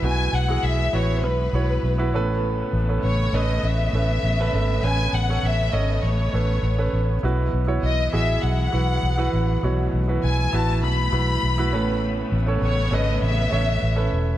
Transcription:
Already playing: E3 B3 E4 F#4 A4 B4
0.02 B1 B2 G#3 E4 F#4 B4 G#5
0.33 B1 F#5
0.48 E4 F#4 G#4
0.63 B1 E5
0.93 A1 E4 F#4 B4 C#5
1.23 B1 B4
1.53 B1 E4 F#4 C#5
1.83 B1
1.98 E4 F#4 B4
2.13 A1 A2 C#3 A3 C#4 A4 B4
2.73 A1
2.89 C#4 A4 B4
3.03 A1 C#5
3.33 A1 C#4 A4 B4 D#5
3.63 A1 E5
3.93 A1 C#4 A4 B4
4.23 A1
4.39 C#4 A4 B4
4.53 G#1 A3
4.83 A1 C#4 A4 B4 G#5
5.13 A1 F#5
5.29 C#4 A4 C#5
5.43 A1 E5
5.72 G#1 C#4 A4 C#5 D#5
6.03 A1 C#5
6.33 A1 C#4 A4 B4
6.63 A1
6.78 C#4 A4 B4
6.93 A1
7.22 B1 B2 E3 F#3 E4 F#4 B4
7.53 B1
7.67 E4 F#4 C#5
7.83 B1 D#5
8.13 A1 E4 F#4 G#4 E5
8.42 B1 F#5
8.72 B1 E4 F#4 B4
9.03 B1
9.18 E4 F#4 B4
9.33 A1
9.63 B1 B2 A3 E4 F#4 C#5
9.93 B1
10.08 E4 F#4 B4
10.23 B1 G#5
10.53 A1 E4 F#4 B4 A5
10.83 B1 B5
11.12 B1 E4 F#4 B4
11.43 B1
11.58 E4 F#4 B4
11.73 A1 A2 C#3 B3 C#4 A4 B4
12.32 A1
12.46 C#4 A4 C#5
12.62 A1 C#5
12.91 G#1 C#4 A4 B4 D#5
13.22 A1 E5
13.51 A1 C#4 A4 C#5
13.83 A1
13.96 C#4 A4 B4
14.12 E1

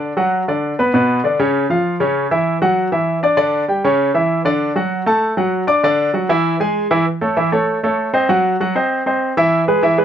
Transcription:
Already playing: D3 D4 D5
0.17 F#3 F#4 F#5
0.48 D3 D4 D5
0.79 B3 B4 B5
0.94 B2 B3 B4
1.24 D3 D4 D5
1.39 C#3 C#4 C#5
1.70 F3 F4 F5
2.00 C#3 C#4 C#5
2.31 E3 E4 E5
2.62 F#3 F#4 F#5
2.92 E3 E4 E5
3.23 D4 D5 D6
3.37 D3 D4 D5
3.68 G3 G4 G5
3.84 C#3 C#4 C#5
4.14 E3 E4 E5
4.45 D3 D4 D5
4.76 F#3 F#4 F#5
5.06 A3 A4 A5
5.37 F#3 F#4 F#5
5.67 D4 D5 D6
5.83 D3 D4 D5
6.14 F#3 F#4 F#5
6.29 E3 E4 E5
6.60 G#3 G#4 G#5
6.91 E3 E4 E5
7.21 A3 A4 C#5
7.37 E3 E4 E5
7.52 A3 A4 C#5
7.83 A3 A4 C#5
8.14 C4 C5 D#5
8.29 F#3 F#4 F#5
8.60 F#3 F#4 F#5
8.75 C4 C5 D#5
9.06 C4 C5 D#5
9.37 E3 E4 E5
9.68 G#3 G#4 B4
9.83 E3 E4 E5
9.98 G#3 G#4 B4

